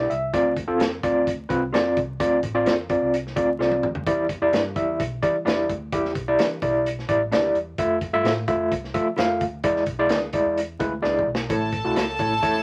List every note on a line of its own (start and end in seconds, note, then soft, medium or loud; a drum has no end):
0.00 0.12 G3 medium
0.00 0.12 E4 medium
0.00 0.12 D5 medium
0.10 0.31 C2 medium
0.10 0.32 E5 medium
0.10 closed hi-hat medium
0.33 0.64 D2 loud
0.33 0.53 C4 medium
0.33 0.53 F4 medium
0.33 0.53 D5 medium
0.33 kick loud
0.33 closed hi-hat medium
0.57 kick medium
0.57 closed hi-hat medium
0.68 0.79 E2 medium
0.68 0.87 C4 medium
0.68 0.87 F4 medium
0.68 0.87 A4 medium
0.79 1.01 F2 medium
0.79 0.89 F4 medium
0.79 0.90 A4 medium
0.79 0.91 C5 medium
0.79 snare loud
0.79 closed hi-hat medium
1.03 1.44 D2 medium
1.03 1.29 C4 medium
1.03 1.29 F4 medium
1.03 1.29 D5 medium
1.03 kick medium
1.03 closed hi-hat medium
1.27 kick medium
1.27 closed hi-hat medium
1.49 1.71 C2 medium
1.49 1.62 C4 medium
1.49 1.62 F4 medium
1.49 1.62 B4 medium
1.49 kick medium
1.49 closed hi-hat medium
1.73 1.94 F2 medium
1.73 1.99 C4 medium
1.73 1.83 F4 medium
1.73 1.99 F4 medium
1.73 1.83 A4 medium
1.73 1.84 C5 medium
1.73 1.99 D5 medium
1.73 snare loud
1.73 closed hi-hat medium
1.97 2.18 C2 medium
1.97 kick medium
1.97 closed hi-hat medium
2.20 2.41 D2 loud
2.20 2.39 C4 medium
2.20 2.39 F4 medium
2.20 2.39 D5 medium
2.20 kick loud
2.20 closed hi-hat medium
2.43 2.64 A1 medium
2.43 kick medium
2.43 closed hi-hat medium
2.55 2.74 C4 medium
2.55 2.74 F4 medium
2.55 2.74 D5 loud
2.66 2.97 F2 medium
2.66 2.76 F4 medium
2.66 2.77 A4 medium
2.66 2.77 C5 medium
2.66 snare loud
2.66 closed hi-hat medium
2.89 3.15 C4 medium
2.89 3.15 F4 medium
2.89 3.15 D5 medium
2.89 kick medium
2.89 closed hi-hat medium
3.02 3.32 C2 medium
3.14 closed hi-hat medium
3.27 snare soft
3.36 3.57 D2 medium
3.36 3.49 C4 medium
3.36 3.49 F4 medium
3.36 3.49 D5 medium
3.36 kick loud
3.36 closed hi-hat medium
3.59 3.80 C2 loud
3.59 3.85 C4 medium
3.59 3.69 F4 medium
3.59 3.85 F4 medium
3.59 3.70 A4 medium
3.59 3.70 C5 medium
3.59 3.85 D5 medium
3.59 snare medium
3.72 high tom medium
3.83 4.04 D2 medium
3.83 mid tom medium
3.95 floor tom medium
4.07 4.37 E2 loud
4.07 4.26 G3 medium
4.07 4.26 E4 medium
4.07 4.26 D5 medium
4.07 kick loud
4.07 closed hi-hat medium
4.29 kick medium
4.29 closed hi-hat medium
4.42 4.52 F2 medium
4.42 4.60 G3 medium
4.42 4.60 E4 medium
4.42 4.61 D5 medium
4.53 4.74 G2 medium
4.53 4.63 D4 medium
4.53 4.63 G4 medium
4.53 4.64 B4 medium
4.53 snare loud
4.53 closed hi-hat medium
4.76 4.97 E2 medium
4.76 5.01 G3 medium
4.76 5.01 E4 medium
4.76 5.01 E5 medium
4.76 kick medium
4.76 closed hi-hat medium
5.00 5.20 B1 loud
5.00 kick medium
5.00 closed hi-hat medium
5.22 5.43 E3 loud
5.22 5.35 G3 medium
5.22 5.35 E4 medium
5.22 5.35 D5 medium
5.22 kick medium
5.22 closed hi-hat medium
5.45 5.67 E2 medium
5.45 5.71 G3 medium
5.45 5.55 D4 medium
5.45 5.71 E4 medium
5.45 5.56 G4 loud
5.45 5.56 B4 loud
5.45 5.71 D5 medium
5.45 snare loud
5.45 closed hi-hat medium
5.70 5.90 D2 medium
5.70 kick medium
5.70 closed hi-hat medium
5.92 6.13 E2 loud
5.92 6.11 G3 medium
5.92 6.12 E4 medium
5.92 6.12 G4 loud
5.92 kick loud
5.92 closed hi-hat medium
6.05 snare soft
6.15 6.36 B1 medium
6.15 kick medium
6.15 closed hi-hat medium
6.28 6.47 G3 medium
6.28 6.47 E4 medium
6.28 6.47 D5 medium
6.39 6.60 E3 loud
6.39 6.49 D4 medium
6.39 6.49 G4 medium
6.39 6.50 B4 medium
6.39 snare loud
6.39 closed hi-hat loud
6.62 7.03 B1 medium
6.62 6.87 G3 medium
6.62 6.87 E4 medium
6.62 6.88 D5 medium
6.62 kick loud
6.62 closed hi-hat medium
6.86 closed hi-hat medium
6.99 snare soft
7.09 7.29 A1 medium
7.09 7.21 G3 medium
7.09 7.21 E4 medium
7.09 7.21 D5 loud
7.09 kick loud
7.09 closed hi-hat medium
7.31 7.53 D2 medium
7.31 7.57 G3 medium
7.31 7.42 D4 medium
7.31 7.57 E4 medium
7.31 7.42 G4 medium
7.31 7.42 B4 medium
7.31 7.57 D5 medium
7.31 snare loud
7.31 closed hi-hat medium
7.55 7.76 E2 medium
7.55 closed hi-hat medium
7.78 8.09 F2 loud
7.78 7.98 A3 medium
7.78 7.98 F4 medium
7.78 7.98 E5 medium
7.78 kick loud
7.78 closed hi-hat loud
8.01 kick medium
8.01 closed hi-hat medium
8.13 8.24 G2 medium
8.13 8.32 A3 medium
8.13 8.32 F4 medium
8.13 8.32 E5 loud
8.24 8.45 A2 loud
8.24 8.34 E4 medium
8.24 8.35 A4 medium
8.24 8.35 C5 medium
8.24 snare loud
8.24 closed hi-hat medium
8.48 8.73 A3 medium
8.48 8.73 F4 medium
8.48 8.73 E5 medium
8.48 kick medium
8.48 closed hi-hat medium
8.72 8.92 C2 medium
8.72 kick medium
8.72 closed hi-hat medium
8.84 snare soft
8.94 9.15 F3 loud
8.94 9.07 A3 medium
8.94 9.07 F4 medium
8.94 9.07 E5 medium
8.94 kick medium
8.94 closed hi-hat medium
9.16 9.38 F2 medium
9.16 9.43 A3 medium
9.16 9.27 E4 medium
9.16 9.43 F4 medium
9.16 9.27 A4 medium
9.16 9.28 C5 medium
9.16 9.43 F5 medium
9.16 snare loud
9.16 closed hi-hat medium
9.41 9.61 D2 medium
9.41 kick medium
9.41 closed hi-hat medium
9.64 9.83 G#3 medium
9.64 9.83 E4 medium
9.64 9.83 D5 medium
9.64 kick loud
9.64 closed hi-hat loud
9.76 snare soft
9.86 10.08 B1 loud
9.86 kick medium
9.86 closed hi-hat medium
9.99 10.18 G#3 medium
9.99 10.18 E4 medium
9.99 10.18 D5 loud
10.09 10.42 D2 medium
10.09 10.20 D4 medium
10.09 10.21 G#4 medium
10.09 10.21 B4 medium
10.09 snare loud
10.09 closed hi-hat medium
10.33 10.59 G#3 medium
10.33 10.59 E4 medium
10.33 10.59 D5 medium
10.33 kick medium
10.33 closed hi-hat medium
10.46 10.76 E2 medium
10.58 closed hi-hat medium
10.80 11.01 D2 medium
10.80 10.92 G#3 medium
10.80 10.93 E4 medium
10.80 10.93 B4 medium
10.80 kick loud
10.80 closed hi-hat medium
11.02 11.24 C#2 loud
11.02 11.28 G#3 medium
11.02 11.13 D4 medium
11.02 11.28 E4 medium
11.02 11.14 G#4 medium
11.02 11.14 B4 medium
11.02 11.28 D5 medium
11.02 snare medium
11.19 mid tom medium
11.27 11.47 B1 medium
11.35 snare loud
11.50 11.80 A1 medium
11.50 11.69 A3 medium
11.50 11.69 E4 medium
11.50 12.63 A4 medium
11.50 11.69 C#5 medium
11.50 12.63 A5 loud
11.50 kick loud
11.50 closed hi-hat medium
11.72 kick medium
11.72 closed hi-hat medium
11.84 11.95 B1 medium
11.84 12.03 A3 medium
11.84 12.03 E4 medium
11.84 12.03 F#4 medium
11.96 12.17 C#2 medium
11.96 12.06 E4 medium
11.96 12.06 A4 medium
11.96 12.07 C#5 medium
11.96 snare loud
11.96 closed hi-hat medium
12.19 12.40 A1 medium
12.19 12.32 A3 medium
12.19 12.32 E4 medium
12.19 12.32 C#5 medium
12.19 kick medium
12.19 closed hi-hat medium
12.43 12.63 E2 medium
12.43 12.61 A3 medium
12.43 12.61 E4 medium
12.43 12.61 C#5 loud
12.43 kick medium
12.43 closed hi-hat medium
12.55 snare soft